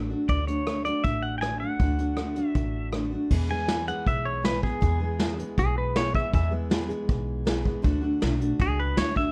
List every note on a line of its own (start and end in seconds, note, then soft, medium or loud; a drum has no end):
0.00 0.13 A1 medium
0.00 0.10 D3 medium
0.00 0.11 A3 medium
0.10 0.29 A3 soft
0.10 0.29 D4 soft
0.10 0.29 F#4 soft
0.28 0.88 D2 medium
0.28 0.48 D3 medium
0.28 0.48 A3 medium
0.28 0.47 D4 medium
0.28 0.46 F#4 medium
0.28 0.47 D5 medium
0.28 kick loud
0.28 closed hi-hat medium
0.47 0.66 A3 soft
0.47 0.67 D4 soft
0.47 0.67 F#4 medium
0.47 0.83 C#5 medium
0.47 closed hi-hat medium
0.67 0.86 D3 soft
0.67 0.86 A3 medium
0.67 0.86 D4 medium
0.67 0.83 F#4 medium
0.67 cross-stick medium
0.67 closed hi-hat soft
0.85 1.42 A3 soft
0.85 1.43 D4 soft
0.85 1.42 F#4 soft
0.85 1.03 D5 medium
0.85 closed hi-hat soft
1.04 1.63 A1 medium
1.04 1.22 E5 loud
1.04 kick loud
1.04 closed hi-hat medium
1.23 1.38 F#5 medium
1.38 1.41 G5 medium
1.38 1.60 G#5 loud
1.42 1.61 D3 soft
1.42 1.62 A3 medium
1.42 1.61 D4 medium
1.42 1.59 F#4 medium
1.42 cross-stick medium
1.42 closed hi-hat medium
1.60 1.80 A3 soft
1.60 1.80 D4 soft
1.60 1.80 F#4 soft
1.60 2.47 F#5 medium
1.79 2.39 D2 medium
1.79 1.99 D3 medium
1.79 2.00 A3 medium
1.79 1.99 D4 medium
1.79 1.97 F#4 medium
1.79 kick loud
1.79 closed hi-hat medium
1.98 2.17 A3 soft
1.98 2.18 D4 soft
1.98 2.18 F#4 soft
1.98 closed hi-hat medium
2.17 2.37 D3 medium
2.17 2.37 A3 medium
2.17 2.36 D4 medium
2.17 2.35 F#4 medium
2.17 cross-stick medium
2.17 closed hi-hat medium
2.36 2.92 A3 soft
2.36 2.93 D4 soft
2.36 2.93 F#4 medium
2.36 closed hi-hat medium
2.47 2.89 E5 medium
2.55 3.14 A1 medium
2.55 kick medium
2.55 closed hi-hat medium
2.92 3.12 D3 medium
2.92 3.12 A3 medium
2.92 3.12 D4 medium
2.92 3.10 F#4 medium
2.92 cross-stick medium
2.92 closed hi-hat medium
3.11 3.32 A3 soft
3.11 3.32 D4 soft
3.11 3.31 F#4 soft
3.30 3.50 E2 medium
3.30 3.90 E2 medium
3.30 3.50 B2 medium
3.30 3.50 E3 medium
3.30 3.50 G#3 medium
3.30 3.49 B3 medium
3.30 3.48 G#4 medium
3.30 kick loud
3.30 crash loud
3.50 3.67 E3 soft
3.50 3.68 G#3 medium
3.50 3.68 B3 soft
3.50 3.69 G#4 medium
3.50 3.87 G#5 medium
3.68 3.88 E3 soft
3.68 3.87 G#3 soft
3.68 3.87 B3 medium
3.68 3.86 G#4 medium
3.68 snare loud
3.68 closed hi-hat medium
3.87 4.42 E3 soft
3.87 4.43 G#3 soft
3.87 4.44 B3 soft
3.87 4.44 G#4 medium
3.87 4.06 F#5 medium
3.87 closed hi-hat medium
4.06 4.65 B1 medium
4.06 4.26 E5 medium
4.06 kick loud
4.06 closed hi-hat medium
4.25 4.44 C#5 medium
4.43 4.63 E3 medium
4.43 4.63 G#3 medium
4.43 4.62 B3 medium
4.43 4.61 G#4 medium
4.43 4.63 B4 medium
4.43 snare loud
4.43 closed hi-hat medium
4.63 4.80 E3 soft
4.63 4.81 G#3 soft
4.63 4.81 B3 soft
4.63 4.81 G#4 medium
4.63 5.37 G#4 medium
4.63 kick medium
4.81 5.01 E2 medium
4.81 5.41 E2 medium
4.81 5.00 B2 medium
4.81 5.01 E3 medium
4.81 5.01 G#3 medium
4.81 5.00 B3 medium
4.81 4.99 G#4 medium
4.81 kick loud
4.81 closed hi-hat medium
5.00 5.17 E3 soft
5.00 5.18 G#3 soft
5.00 5.20 B3 soft
5.00 5.19 G#4 medium
5.19 5.38 E3 medium
5.19 5.39 G#3 medium
5.19 5.38 B3 medium
5.19 5.37 G#4 medium
5.19 snare medium
5.19 closed hi-hat medium
5.38 5.95 E3 soft
5.38 5.95 G#3 medium
5.38 5.96 B3 medium
5.38 5.95 G#4 medium
5.38 closed hi-hat medium
5.57 6.17 B1 medium
5.57 5.77 G#4 medium
5.57 kick loud
5.57 closed hi-hat medium
5.78 5.96 B4 medium
5.96 6.15 E3 medium
5.96 6.15 G#3 medium
5.96 6.14 B3 medium
5.96 6.13 G#4 medium
5.96 6.15 C#5 medium
5.96 snare loud
5.96 closed hi-hat medium
6.14 6.32 E3 soft
6.14 6.32 G#3 soft
6.14 6.33 B3 soft
6.14 6.33 G#4 soft
6.14 6.33 E5 medium
6.14 kick medium
6.33 6.52 E2 medium
6.33 6.92 E2 loud
6.33 6.52 B2 medium
6.33 6.52 E3 medium
6.33 6.51 G#3 medium
6.33 6.51 B3 medium
6.33 6.50 G#4 medium
6.33 6.52 E5 medium
6.33 kick loud
6.33 closed hi-hat medium
6.51 6.69 E3 soft
6.51 6.69 G#3 medium
6.51 6.70 B3 medium
6.51 6.70 G#4 medium
6.70 6.89 E3 medium
6.70 6.89 G#3 medium
6.70 6.88 B3 medium
6.70 6.87 G#4 medium
6.70 snare loud
6.70 closed hi-hat medium
6.88 7.44 E3 medium
6.88 7.45 G#3 medium
6.88 7.46 B3 medium
6.88 7.46 G#4 medium
6.88 closed hi-hat medium
7.09 7.68 B1 medium
7.09 kick loud
7.09 closed hi-hat medium
7.45 7.65 E3 medium
7.45 7.65 G#3 medium
7.45 7.64 B3 medium
7.45 7.63 G#4 medium
7.45 snare loud
7.45 closed hi-hat medium
7.65 7.82 E3 soft
7.65 7.82 G#3 soft
7.65 7.83 B3 medium
7.65 7.84 G#4 medium
7.65 kick medium
7.82 8.14 D2 medium
7.82 8.02 D3 medium
7.82 8.02 A3 medium
7.82 8.01 D4 medium
7.82 8.00 F#4 medium
7.82 kick loud
7.82 closed hi-hat medium
8.01 8.21 A3 medium
8.01 8.21 D4 medium
8.01 8.21 F#4 medium
8.21 8.54 B1 medium
8.21 8.40 D3 medium
8.21 8.41 A3 medium
8.21 8.41 D4 medium
8.21 8.39 F#4 medium
8.21 snare loud
8.21 closed hi-hat medium
8.40 8.96 A3 soft
8.40 8.97 D4 medium
8.40 8.97 F#4 medium
8.40 closed hi-hat medium
8.59 8.92 C#2 medium
8.59 8.79 G#4 medium
8.59 kick loud
8.59 closed hi-hat medium
8.80 8.97 B4 medium
8.97 9.30 D2 medium
8.97 9.16 D3 medium
8.97 9.16 A3 medium
8.97 9.16 D4 medium
8.97 9.15 F#4 medium
8.97 9.16 C#5 medium
8.97 snare loud
8.97 closed hi-hat medium
9.16 9.32 A3 soft
9.16 9.32 D4 soft
9.16 9.32 F#4 medium
9.16 9.32 E5 medium
9.16 kick medium